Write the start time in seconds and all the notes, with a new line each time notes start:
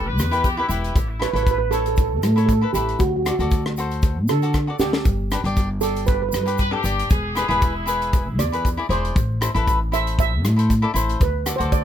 Already playing: E1
0.06 B4
0.18 E2, cross-stick, closed hi-hat, shaker
0.31 E4 G4 B4, closed hi-hat, shaker
0.44 G4, kick, closed hi-hat, shaker
0.57 E4 G4 B4
0.68 E1 E4 G4 B4, closed hi-hat, shaker
0.84 closed hi-hat
0.95 A1, kick, closed hi-hat, shaker
1.19 E4 A4 B4 C#5, cross-stick, closed hi-hat
1.28 B4
1.33 A1 E4 A4 B4 C#5, closed hi-hat
1.43 B4, kick, closed hi-hat, shaker
1.51 B4
1.58 B4
1.71 E4 A4 C#5, closed hi-hat, shaker
1.85 A4, closed hi-hat, shaker
1.95 A4, kick, closed hi-hat, shaker
2.00 A4
2.08 A4
2.17 A4
2.22 A2 A4, cross-stick, closed hi-hat, shaker
2.32 E4 A4
2.37 A4 C#5, closed hi-hat, shaker
2.46 A4, kick, closed hi-hat, shaker
2.53 A4
2.61 E4 A4 B4
2.73 A1 E4 G4 A4 B4, closed hi-hat, shaker
2.88 closed hi-hat
2.99 D2 F#4, kick, closed hi-hat, shaker
3.08 F#4
3.16 F#4
3.23 F#4 A4, cross-stick, closed hi-hat, shaker
3.27 F#4 D5
3.39 D2 F#4 A4 D5, closed hi-hat, shaker
3.51 kick, closed hi-hat, shaker
3.66 cross-stick
3.77 F#4 A4 C5, closed hi-hat, shaker
3.91 closed hi-hat, shaker
4.02 kick, closed hi-hat, shaker
4.28 D3 A4, cross-stick, closed hi-hat, shaker
4.42 F#4 A4 D5, closed hi-hat, shaker
4.54 kick, cross-stick, closed hi-hat, shaker
4.67 F#4 A4 D5
4.79 D2 F#4 G4 A4 D5, snare, shaker
4.93 snare
5.05 G1, kick, closed hi-hat, shaker
5.31 D4 G4 B4, cross-stick, closed hi-hat, shaker
5.44 G1 D4 G4 D5, closed hi-hat
5.56 kick, closed hi-hat, shaker
5.81 D4 G4 A4 D5, closed hi-hat, shaker
5.95 closed hi-hat, shaker
6.06 B4, kick, closed hi-hat, shaker
6.15 B4
6.22 B4
6.29 B4, shaker
6.33 G2 B4, cross-stick, closed hi-hat
6.43 D4 G4 B4, shaker
6.47 closed hi-hat
6.58 B4, kick, closed hi-hat, shaker
6.71 D4 G4 A4
6.83 G1 D4 G4 D5, closed hi-hat, shaker
6.99 closed hi-hat
7.10 E1 G#4, kick, closed hi-hat, shaker
7.35 E4 G#4 B4, cross-stick, closed hi-hat, shaker
7.48 E1 E4 G#4 B4, closed hi-hat
7.61 E4, kick, closed hi-hat, shaker
7.86 E4 G#4 B4, closed hi-hat, shaker
8.01 closed hi-hat, shaker
8.13 kick, closed hi-hat, shaker
8.38 E2 D5, cross-stick, closed hi-hat, shaker
8.52 E4 G#4 B4, closed hi-hat, shaker
8.65 kick, closed hi-hat, shaker
8.77 E4 G#4 D5
8.89 E1 E4 G#4 C5 D5, closed hi-hat
9.05 closed hi-hat
9.15 A1, kick, closed hi-hat, shaker
9.41 E4 A4 C5, cross-stick, closed hi-hat, shaker
9.54 A1 E4 A4 B4, closed hi-hat
9.67 kick, closed hi-hat, shaker
9.92 E4 A4 C5 E5, closed hi-hat, shaker
10.07 closed hi-hat, shaker
10.18 E5, kick, closed hi-hat, shaker
10.44 A2, cross-stick, closed hi-hat, shaker
10.56 E4 A4 C5, closed hi-hat, shaker
10.70 kick, closed hi-hat, shaker
10.82 E4 A4 D5
10.94 A1 E4 A4 C5, closed hi-hat, shaker
11.09 closed hi-hat
11.20 D2 B4, kick, closed hi-hat, shaker
11.46 F#4 A4 D5, cross-stick, closed hi-hat, shaker
11.56 D2 F#4 C5
11.60 A4 D5, closed hi-hat, shaker
11.72 D5, kick, closed hi-hat, shaker